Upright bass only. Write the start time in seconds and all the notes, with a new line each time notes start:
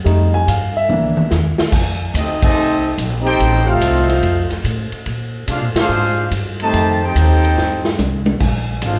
0.05 F2
0.47 G2
0.89 C2
1.18 muted upright bass stroke
1.31 E2
1.59 muted upright bass stroke
1.72 F2
2.14 D2
2.43 muted upright bass stroke
2.57 C2
2.98 A#1
3.40 A1
3.81 C2
4.22 F2
4.51 muted upright bass stroke
4.64 A2
4.92 muted upright bass stroke
5.06 A#2
5.48 C3
5.62 A#2
5.75 G#2
5.89 G#2
6.31 G2
6.73 F2
7.16 D#2
7.57 G2
7.98 C2
8.40 A#1
8.82 G#1